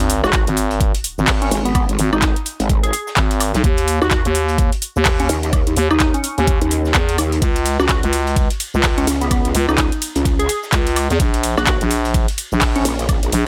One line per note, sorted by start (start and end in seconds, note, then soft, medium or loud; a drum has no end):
0.00 0.21 G#1 loud
0.00 closed hi-hat soft
0.00 closed hi-hat medium
0.00 sub drop medium
0.00 shaker soft
0.10 open hi-hat loud
0.10 shaker medium
0.24 0.45 G#1 loud
0.24 0.30 F#4 medium
0.24 snare medium
0.24 high woodblock medium
0.24 shaker soft
0.33 0.42 F#4 medium
0.33 kick loud
0.33 snare loud
0.33 clap loud
0.33 closed hi-hat medium
0.33 shaker soft
0.47 0.92 G#1 medium
0.47 closed hi-hat medium
0.47 shaker soft
0.57 open hi-hat loud
0.57 shaker medium
0.71 closed hi-hat soft
0.71 shaker soft
0.80 kick loud
0.80 closed hi-hat medium
0.80 shaker medium
0.80 shaker soft
0.95 closed hi-hat medium
0.95 closed hi-hat soft
0.95 shaker soft
1.04 open hi-hat loud
1.04 shaker medium
1.18 1.50 G#1 loud
1.18 shaker soft
1.27 kick loud
1.27 snare loud
1.27 clap loud
1.27 closed hi-hat medium
1.27 open hi-hat medium
1.27 shaker soft
1.42 1.56 C#4 medium
1.42 closed hi-hat medium
1.42 shaker soft
1.51 1.87 G#1 loud
1.51 open hi-hat loud
1.51 shaker medium
1.65 1.72 B3 medium
1.65 closed hi-hat soft
1.65 shaker soft
1.75 1.84 B3 medium
1.75 kick loud
1.75 closed hi-hat medium
1.75 high woodblock medium
1.75 shaker medium
1.75 shaker soft
1.89 1.97 G#1 loud
1.89 closed hi-hat medium
1.89 shaker soft
1.98 2.10 G#1 loud
1.98 open hi-hat loud
1.98 shaker medium
2.13 2.34 G#1 loud
2.13 2.19 D#4 medium
2.13 high woodblock medium
2.13 shaker soft
2.22 2.31 D#4 medium
2.22 kick loud
2.22 snare loud
2.22 clap loud
2.22 closed hi-hat medium
2.22 shaker soft
2.36 closed hi-hat medium
2.36 shaker soft
2.46 open hi-hat loud
2.46 shaker medium
2.60 2.92 G#1 loud
2.60 closed hi-hat soft
2.60 shaker soft
2.69 kick loud
2.69 closed hi-hat medium
2.69 shaker soft
2.69 shaker loud
2.83 2.90 G#4 medium
2.83 closed hi-hat medium
2.83 shaker soft
2.93 3.02 G#4 medium
2.93 open hi-hat loud
2.93 shaker medium
3.07 snare soft
3.07 shaker soft
3.17 3.52 G#1 medium
3.17 kick loud
3.17 snare loud
3.17 clap loud
3.17 closed hi-hat medium
3.17 shaker soft
3.31 closed hi-hat soft
3.31 closed hi-hat medium
3.31 shaker soft
3.40 open hi-hat loud
3.40 high woodblock medium
3.40 shaker medium
3.54 3.62 B1 loud
3.54 snare loud
3.54 closed hi-hat soft
3.54 shaker medium
3.54 shaker soft
3.63 3.99 D#2 loud
3.63 kick loud
3.63 closed hi-hat medium
3.63 shaker medium
3.63 shaker soft
3.77 closed hi-hat soft
3.77 closed hi-hat medium
3.77 shaker soft
3.88 open hi-hat loud
3.88 shaker medium
4.01 4.23 D#2 loud
4.01 4.08 F#4 medium
4.01 snare soft
4.01 high woodblock medium
4.01 shaker soft
4.11 4.20 F#4 medium
4.11 kick loud
4.11 snare loud
4.11 clap loud
4.11 closed hi-hat medium
4.11 shaker soft
4.25 4.70 D#2 medium
4.25 closed hi-hat medium
4.25 shaker soft
4.35 open hi-hat loud
4.35 shaker medium
4.48 closed hi-hat soft
4.48 shaker soft
4.58 kick loud
4.58 closed hi-hat medium
4.58 shaker soft
4.58 shaker medium
4.72 closed hi-hat medium
4.72 closed hi-hat soft
4.72 shaker soft
4.82 open hi-hat loud
4.82 shaker medium
4.96 5.28 D#2 loud
4.96 shaker soft
5.05 kick loud
5.05 snare loud
5.05 clap loud
5.05 closed hi-hat medium
5.05 open hi-hat medium
5.05 shaker soft
5.20 5.34 C#4 medium
5.20 closed hi-hat medium
5.20 shaker soft
5.29 5.65 D#2 medium
5.29 open hi-hat loud
5.29 shaker medium
5.43 closed hi-hat soft
5.43 shaker soft
5.53 kick loud
5.53 closed hi-hat medium
5.53 high woodblock medium
5.53 shaker soft
5.53 shaker medium
5.67 5.75 D#2 medium
5.67 closed hi-hat medium
5.67 shaker soft
5.76 5.88 D#2 medium
5.76 open hi-hat loud
5.76 shaker medium
5.91 6.12 D#2 loud
5.91 5.97 D#4 medium
5.91 high woodblock medium
5.91 shaker soft
6.00 6.09 D#4 medium
6.00 kick loud
6.00 snare loud
6.00 clap loud
6.00 closed hi-hat medium
6.00 shaker soft
6.14 6.20 C#4 medium
6.14 closed hi-hat medium
6.14 shaker soft
6.23 6.33 C#4 medium
6.23 open hi-hat loud
6.23 shaker medium
6.38 6.59 D#2 loud
6.38 7.03 C#4 medium
6.38 closed hi-hat soft
6.38 shaker soft
6.47 kick loud
6.47 closed hi-hat medium
6.47 shaker soft
6.61 6.93 D#2 medium
6.61 closed hi-hat medium
6.61 shaker soft
6.71 open hi-hat loud
6.71 shaker medium
6.85 snare soft
6.85 shaker soft
6.95 7.17 E2 loud
6.95 kick loud
6.95 snare loud
6.95 clap loud
6.95 closed hi-hat medium
6.95 shaker soft
7.09 closed hi-hat soft
7.09 shaker soft
7.18 7.40 D#2 loud
7.18 open hi-hat loud
7.18 high woodblock medium
7.18 shaker medium
7.32 closed hi-hat soft
7.32 shaker soft
7.42 7.77 C#2 loud
7.42 kick loud
7.42 closed hi-hat medium
7.42 ride medium
7.42 shaker soft
7.42 shaker medium
7.56 closed hi-hat soft
7.56 closed hi-hat medium
7.56 shaker soft
7.66 open hi-hat loud
7.66 ride medium
7.66 shaker medium
7.79 8.01 C#2 loud
7.79 7.86 F#4 medium
7.79 snare soft
7.79 high woodblock medium
7.79 shaker soft
7.89 7.98 F#4 medium
7.89 kick loud
7.89 snare loud
7.89 clap loud
7.89 closed hi-hat medium
7.89 ride medium
7.89 shaker soft
7.89 shaker medium
8.03 8.48 C#2 medium
8.03 closed hi-hat medium
8.03 shaker soft
8.13 open hi-hat loud
8.13 ride medium
8.13 shaker medium
8.27 closed hi-hat soft
8.27 shaker soft
8.36 kick loud
8.36 closed hi-hat medium
8.36 ride medium
8.36 shaker soft
8.50 closed hi-hat medium
8.50 closed hi-hat soft
8.50 shaker soft
8.60 open hi-hat loud
8.60 ride medium
8.60 shaker medium
8.74 9.06 C#2 loud
8.74 shaker soft
8.83 kick loud
8.83 snare loud
8.83 clap loud
8.83 closed hi-hat medium
8.83 open hi-hat medium
8.83 ride medium
8.83 shaker soft
8.98 9.12 C#4 medium
8.98 closed hi-hat soft
8.98 shaker soft
9.07 9.43 C#2 loud
9.07 open hi-hat loud
9.07 ride medium
9.07 shaker medium
9.21 9.27 B3 medium
9.21 closed hi-hat soft
9.21 shaker soft
9.31 9.40 B3 medium
9.31 kick loud
9.31 closed hi-hat medium
9.31 ride medium
9.31 high woodblock medium
9.31 shaker soft
9.45 9.53 C#2 medium
9.45 closed hi-hat medium
9.45 shaker soft
9.55 9.66 C#2 medium
9.55 open hi-hat loud
9.55 ride medium
9.55 shaker medium
9.68 9.90 C#2 loud
9.68 9.75 D#4 medium
9.68 high woodblock medium
9.68 shaker soft
9.78 9.87 D#4 medium
9.78 kick loud
9.78 snare loud
9.78 clap loud
9.78 closed hi-hat medium
9.78 ride medium
9.78 shaker soft
9.78 shaker medium
9.92 closed hi-hat medium
9.92 shaker soft
10.02 open hi-hat loud
10.02 ride medium
10.02 shaker medium
10.15 10.47 C#2 medium
10.15 closed hi-hat soft
10.15 shaker soft
10.25 kick loud
10.25 closed hi-hat medium
10.25 ride medium
10.25 shaker soft
10.25 shaker loud
10.39 10.46 G#4 loud
10.39 closed hi-hat medium
10.39 shaker soft
10.49 10.58 G#4 medium
10.49 open hi-hat loud
10.49 ride medium
10.49 shaker medium
10.63 snare soft
10.63 shaker soft
10.72 11.08 C#2 loud
10.72 kick loud
10.72 snare loud
10.72 clap loud
10.72 closed hi-hat medium
10.72 ride medium
10.72 shaker soft
10.87 closed hi-hat medium
10.87 closed hi-hat soft
10.87 shaker soft
10.96 open hi-hat loud
10.96 ride medium
10.96 high woodblock medium
10.96 shaker medium
11.10 11.18 E2 medium
11.10 snare loud
11.10 closed hi-hat soft
11.10 shaker medium
11.10 shaker soft
11.20 11.55 A#1 medium
11.20 kick loud
11.20 closed hi-hat medium
11.20 ride medium
11.20 shaker medium
11.34 closed hi-hat soft
11.34 closed hi-hat medium
11.34 shaker soft
11.43 open hi-hat loud
11.43 ride medium
11.43 shaker medium
11.57 11.79 A#1 loud
11.57 11.64 F#4 medium
11.57 snare soft
11.57 high woodblock medium
11.57 shaker soft
11.67 11.76 F#4 medium
11.67 kick loud
11.67 snare loud
11.67 clap loud
11.67 closed hi-hat medium
11.67 ride medium
11.67 shaker soft
11.81 12.26 A#1 medium
11.81 closed hi-hat medium
11.81 shaker soft
11.91 open hi-hat loud
11.91 ride medium
11.91 shaker medium
12.05 closed hi-hat soft
12.05 shaker soft
12.14 kick loud
12.14 closed hi-hat medium
12.14 ride medium
12.14 shaker soft
12.14 shaker medium
12.28 closed hi-hat medium
12.28 closed hi-hat soft
12.28 shaker soft
12.38 open hi-hat loud
12.38 ride medium
12.38 shaker medium
12.52 12.84 A#1 loud
12.52 shaker soft
12.61 kick loud
12.61 snare loud
12.61 clap loud
12.61 closed hi-hat medium
12.61 open hi-hat medium
12.61 ride medium
12.61 shaker soft
12.76 12.90 C#4 loud
12.76 closed hi-hat medium
12.76 shaker soft
12.85 13.21 A#1 medium
12.85 open hi-hat loud
12.85 ride medium
12.85 shaker medium
12.99 closed hi-hat soft
12.99 shaker soft
13.09 kick loud
13.09 closed hi-hat medium
13.09 ride medium
13.09 high woodblock medium
13.09 shaker soft
13.09 shaker medium
13.23 13.31 A#1 loud
13.23 closed hi-hat medium
13.23 shaker soft
13.32 13.44 A#1 loud
13.32 open hi-hat loud
13.32 ride medium
13.32 shaker medium